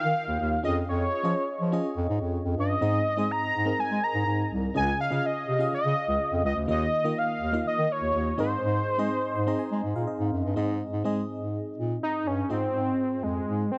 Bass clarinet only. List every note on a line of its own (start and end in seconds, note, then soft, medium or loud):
0.04 0.13 D#3 loud
0.28 0.37 D#2 medium
0.40 0.58 D#2 medium
0.64 0.82 F2 loud
0.88 1.06 F2 loud
1.24 1.33 F3 loud
1.61 1.79 F3 loud
1.97 2.06 F2 medium
2.09 2.18 G#2 loud
2.21 2.39 F2 medium
2.45 2.54 F2 medium
2.57 2.75 G2 medium
2.81 3.00 G#2 loud
3.18 3.27 G#3 medium
3.54 3.72 G#2 medium
3.79 3.84 G#3 soft
3.90 4.00 G#3 loud
4.14 4.24 G#2 medium
4.26 4.45 G#2 medium
4.50 4.69 C2 medium
4.75 4.93 C#2 loud
5.11 5.20 C#3 loud
5.48 5.66 C3 medium
5.72 5.77 C#3 soft
5.84 5.93 C#3 loud
6.08 6.17 C#2 medium
6.32 6.41 F2 medium
6.44 6.53 C#2 loud
6.55 6.65 D2 medium
6.68 6.86 D#2 loud
7.04 7.14 D#3 medium
7.41 7.59 D#2 medium
7.65 7.70 D#3 soft
7.77 7.86 D#3 loud
8.01 8.11 D#2 medium
8.14 8.32 D#2 loud
8.38 8.56 G#2 loud
8.63 8.81 G#2 loud
8.99 9.08 G#3 medium
9.36 9.54 G#2 medium
9.72 9.81 G#3 loud
9.84 9.93 G#2 medium
9.96 10.05 A#2 medium
10.20 10.29 G#2 medium
10.33 10.41 F#2 medium
10.44 10.53 G2 medium
10.56 10.84 G#2 loud
10.93 11.02 G#2 loud
11.05 11.23 G#3 loud
11.41 11.59 G#2 medium
11.78 11.96 A#2 medium
12.26 12.44 G2 medium
12.49 12.68 G#2 loud
12.74 12.92 G#2 medium
13.22 13.40 F2 medium
13.47 13.65 G#2 medium